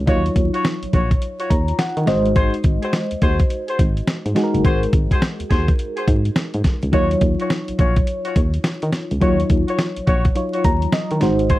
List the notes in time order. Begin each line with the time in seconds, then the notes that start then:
0.06 D#2 F#3 D#4 F4 F#4 C#5, kick, closed hi-hat
0.26 closed hi-hat
0.36 D#2, kick, closed hi-hat
0.54 F4 F#4 C#5, closed hi-hat
0.65 snare, closed hi-hat
0.83 A#1, closed hi-hat
0.93 A#1 F4 F#4 C#5, kick, closed hi-hat
1.11 kick, closed hi-hat
1.22 closed hi-hat
1.39 F4 F#4 C#5, closed hi-hat
1.50 D#2 A#5, kick, closed hi-hat
1.68 closed hi-hat
1.79 F#5, snare, closed hi-hat
1.97 D#3, closed hi-hat
2.06 G#1 G#3 D#4 F#4 C5 D#5, snare, closed hi-hat
2.26 closed hi-hat
2.36 F#4 G#4 C5, kick, closed hi-hat
2.54 closed hi-hat
2.64 G#1, kick, closed hi-hat
2.82 F#4 G#4 C5, closed hi-hat
2.93 snare, closed hi-hat
3.11 D#2, closed hi-hat
3.22 D#2 F#4 G#4 C5, kick, closed hi-hat
3.39 kick, closed hi-hat
3.50 closed hi-hat
3.68 F#4 G#4 C5, closed hi-hat
3.79 G#1, kick, closed hi-hat
3.97 closed hi-hat
4.07 snare, closed hi-hat
4.26 G#2, closed hi-hat
4.35 G#3 D#4 F#4 G#4, snare, closed hi-hat
4.44 A#4
4.54 F#1, closed hi-hat
4.64 G#1 F#4 G#4 C5, kick, closed hi-hat
4.83 closed hi-hat
4.93 G#1, kick, closed hi-hat
5.11 F#4 G#4 C5, kick, closed hi-hat
5.22 snare, closed hi-hat
5.40 D#2, closed hi-hat
5.50 D#2 F#4 G#4 C5, kick, snare, closed hi-hat
5.68 kick, closed hi-hat
5.79 closed hi-hat
5.96 F#4 G#4 C5, closed hi-hat
6.08 G#2, kick, closed hi-hat
6.25 closed hi-hat
6.36 snare, closed hi-hat
6.54 G#2, closed hi-hat
6.64 kick, snare, closed hi-hat
6.83 C#2, closed hi-hat
6.92 D#2 F#3 D#4 F4 F#4 C#5, kick, closed hi-hat
7.11 closed hi-hat
7.21 D#2, kick, closed hi-hat
7.39 F4 F#4 C#5, closed hi-hat
7.50 snare, closed hi-hat
7.68 A#1, closed hi-hat
7.79 A#1 F4 F#4 C#5, kick, closed hi-hat
7.96 kick, closed hi-hat
8.07 closed hi-hat
8.25 F4 F#4 C#5, closed hi-hat
8.36 D#2, kick, closed hi-hat
8.54 closed hi-hat
8.64 snare, closed hi-hat
8.82 D#3, closed hi-hat
8.92 snare, closed hi-hat
9.11 C#2, closed hi-hat
9.21 D#2 F#3 D#4 F4 F#4 C#5, kick, closed hi-hat
9.40 closed hi-hat
9.50 D#2, kick, closed hi-hat
9.68 F4 F#4 C#5, closed hi-hat
9.79 snare, closed hi-hat
9.96 A#1, closed hi-hat
10.07 A#1 F4 F#4 C#5, kick, closed hi-hat
10.25 kick, closed hi-hat
10.35 F#3 D#4 F4 C#5, closed hi-hat
10.53 F4 F#4 C#5, closed hi-hat
10.64 D#2 A#5, kick, closed hi-hat
10.82 closed hi-hat
10.92 D#5, snare, closed hi-hat
11.11 D#3, closed hi-hat
11.21 G#1 G#3 D#4 F#4 C5, snare, closed hi-hat
11.39 closed hi-hat
11.50 F#4 G#4 C5, kick, closed hi-hat